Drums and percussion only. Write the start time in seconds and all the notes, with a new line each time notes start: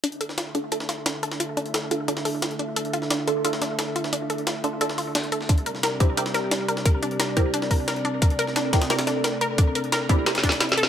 0.04 closed hi-hat
0.12 closed hi-hat
0.21 closed hi-hat
0.29 snare
0.38 snare, closed hi-hat
0.55 closed hi-hat
0.72 closed hi-hat
0.80 snare
0.89 snare, closed hi-hat
1.06 snare, closed hi-hat
1.23 closed hi-hat
1.32 snare
1.40 closed hi-hat
1.57 closed hi-hat
1.66 closed hi-hat
1.74 snare, closed hi-hat
1.91 closed hi-hat
2.08 closed hi-hat
2.17 snare
2.25 closed hi-hat, open hi-hat
2.42 snare, closed hi-hat
2.51 closed hi-hat
2.59 closed hi-hat
2.76 closed hi-hat
2.85 closed hi-hat
2.93 closed hi-hat
3.02 snare
3.10 snare, closed hi-hat
3.27 closed hi-hat
3.45 closed hi-hat
3.53 snare
3.62 snare, closed hi-hat
3.79 snare, closed hi-hat
3.96 closed hi-hat
4.04 snare
4.13 closed hi-hat
4.30 closed hi-hat
4.38 closed hi-hat
4.47 snare, closed hi-hat
4.64 closed hi-hat
4.81 closed hi-hat
4.89 snare
4.98 closed hi-hat, open hi-hat
5.15 snare, closed hi-hat
5.24 closed hi-hat
5.32 closed hi-hat
5.41 snare
5.49 kick, closed hi-hat
5.58 closed hi-hat
5.66 closed hi-hat
5.75 snare
5.83 snare, closed hi-hat
6.00 kick, closed hi-hat
6.17 closed hi-hat
6.26 snare
6.34 snare, closed hi-hat
6.51 snare, closed hi-hat
6.68 closed hi-hat
6.77 snare
6.86 kick, closed hi-hat
7.03 closed hi-hat
7.11 closed hi-hat
7.20 snare, closed hi-hat
7.37 kick, closed hi-hat
7.54 closed hi-hat
7.62 snare
7.71 kick, closed hi-hat, open hi-hat
7.88 snare, closed hi-hat
7.96 closed hi-hat
8.05 closed hi-hat
8.22 kick, closed hi-hat
8.30 closed hi-hat
8.39 closed hi-hat
8.47 snare
8.56 snare, closed hi-hat
8.73 kick, snare, closed hi-hat
8.82 snare, closed hi-hat
8.90 snare, closed hi-hat
8.99 snare, closed hi-hat
9.07 snare, closed hi-hat
9.24 snare, closed hi-hat
9.41 closed hi-hat
9.58 kick, closed hi-hat
9.75 closed hi-hat
9.84 closed hi-hat
9.92 snare, closed hi-hat
10.09 kick, closed hi-hat
10.26 snare, closed hi-hat
10.35 snare, closed hi-hat
10.38 snare
10.43 kick, snare, closed hi-hat
10.49 snare
10.52 snare, closed hi-hat
10.60 snare, closed hi-hat
10.69 snare, closed hi-hat
10.78 closed hi-hat
10.83 snare